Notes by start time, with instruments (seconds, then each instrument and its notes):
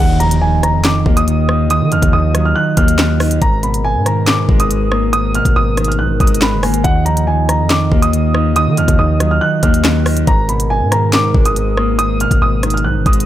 0.00 808-style bass D#2, clean electric guitar D#3, french horn section D#3 F4 D#5, grand piano F#5, impact
0.20 clean electric guitar F3, grand piano A#5, closed hi-hat
0.31 closed hi-hat
0.42 clean electric guitar D#3, grand piano G#5
0.63 grand piano A#5, cross-stick, closed hi-hat
0.74 808-style bass F2
0.84 clean electric guitar D#3, grand piano D6, snare, clap
1.06 808-style bass D#2, clean electric guitar A#3, kick
1.17 grand piano D#6, closed hi-hat
1.27 clean electric guitar D#3, closed hi-hat
1.49 clean electric guitar D#4, cross-stick
1.70 clean electric guitar D#3, grand piano D#6, closed hi-hat
1.81 808-style bass D#3
1.92 808-style bass D#2, clean electric guitar F3, grand piano F6, closed hi-hat
2.02 808-style bass D#2, kick, closed hi-hat
2.12 808-style bass D#2, clean electric guitar D#3, grand piano D#6
2.34 clean electric guitar F#3, cross-stick, closed hi-hat
2.45 grand piano F6
2.56 clean electric guitar D#3, grand piano F#6
2.77 808-style bass D#2, clean electric guitar A#3, grand piano F6, kick, closed hi-hat
2.88 closed hi-hat
2.99 clean electric guitar D#3, snare, clap
3.20 clean electric guitar D#4, cross-stick, open hi-hat
3.31 closed hi-hat
3.41 808-style bass G#1, clean electric guitar G#2, french horn section B2 G#3 A#4, grand piano A#5, kick, closed hi-hat
3.63 clean electric guitar B2, grand piano B5, closed hi-hat
3.74 closed hi-hat
3.84 clean electric guitar G#2, grand piano G#5
3.95 808-style bass G#2
4.06 clean electric guitar D#3, grand piano A#5, cross-stick, closed hi-hat
4.27 clean electric guitar G#2, grand piano D6, snare, clap
4.49 808-style bass G#1, clean electric guitar G#3, kick
4.60 grand piano D#6, closed hi-hat
4.71 clean electric guitar G#2, closed hi-hat
4.92 clean electric guitar A#3, cross-stick
5.13 clean electric guitar G#2, grand piano D#6, closed hi-hat
5.35 clean electric guitar B2, grand piano F6, closed hi-hat
5.45 808-style bass G#1, kick, closed hi-hat
5.56 808-style bass G#1, clean electric guitar G#2, grand piano D#6
5.77 clean electric guitar D#3, cross-stick, closed hi-hat
5.84 grand piano F6, closed hi-hat
5.92 closed hi-hat
5.99 808-style bass B1, clean electric guitar G#2, grand piano F#6
6.09 808-style bass G#1
6.20 808-style bass G#1, clean electric guitar G#3, grand piano D#6, kick, closed hi-hat
6.27 closed hi-hat
6.35 closed hi-hat
6.41 clean electric guitar G#2, grand piano B5, snare, clap
6.52 808-style bass F#1
6.63 clean electric guitar A#3, grand piano G#5, cross-stick, open hi-hat
6.68 808-style bass G#1
6.74 closed hi-hat
6.84 808-style bass D#2, french horn section D#3 F4 D#5, clean electric guitar D#3, grand piano F#5, kick, closed hi-hat
7.06 clean electric guitar F3, grand piano A#5, closed hi-hat
7.17 closed hi-hat
7.27 clean electric guitar D#3, grand piano G#5
7.49 grand piano A#5, cross-stick, closed hi-hat
7.60 808-style bass F2
7.70 clean electric guitar D#3, grand piano D6, snare, clap
7.92 808-style bass D#2, clean electric guitar A#3, kick
8.02 grand piano D#6, closed hi-hat
8.13 clean electric guitar D#3, closed hi-hat
8.35 clean electric guitar D#4, cross-stick
8.56 clean electric guitar D#3, grand piano D#6, closed hi-hat
8.67 808-style bass D#3
8.77 808-style bass D#2, clean electric guitar F3, grand piano F6, closed hi-hat
8.88 808-style bass D#2, kick, closed hi-hat
8.98 808-style bass D#2, clean electric guitar D#3, grand piano D#6
9.20 clean electric guitar F#3, cross-stick, closed hi-hat
9.31 grand piano F6
9.41 clean electric guitar D#3, grand piano F#6
9.63 808-style bass D#2, clean electric guitar A#3, grand piano F6, kick, closed hi-hat
9.74 closed hi-hat
9.84 clean electric guitar D#3, snare, clap
10.06 clean electric guitar D#4, cross-stick, open hi-hat
10.17 closed hi-hat
10.27 808-style bass G#1, clean electric guitar G#2, french horn section B2 G#3 A#4, grand piano A#5, kick, closed hi-hat
10.49 clean electric guitar B2, grand piano B5, closed hi-hat
10.60 closed hi-hat
10.70 clean electric guitar G#2, grand piano G#5
10.81 808-style bass G#2
10.91 clean electric guitar D#3, grand piano A#5, cross-stick, closed hi-hat
11.13 clean electric guitar G#2, grand piano D6, snare, clap
11.35 808-style bass G#1, clean electric guitar G#3, kick
11.45 grand piano D#6, closed hi-hat
11.56 clean electric guitar G#2, closed hi-hat
11.77 clean electric guitar A#3, cross-stick
11.99 clean electric guitar G#2, grand piano D#6, closed hi-hat
12.20 clean electric guitar B2, grand piano F6, closed hi-hat
12.31 808-style bass G#1, kick, closed hi-hat
12.41 808-style bass G#1, clean electric guitar G#2, grand piano D#6
12.63 clean electric guitar D#3, cross-stick, closed hi-hat
12.70 grand piano F6, closed hi-hat
12.77 closed hi-hat
12.84 808-style bass B1, clean electric guitar G#2, grand piano F#6
12.95 808-style bass G#1
13.06 808-style bass G#1, clean electric guitar G#3, grand piano D#6, kick, closed hi-hat
13.13 closed hi-hat
13.20 closed hi-hat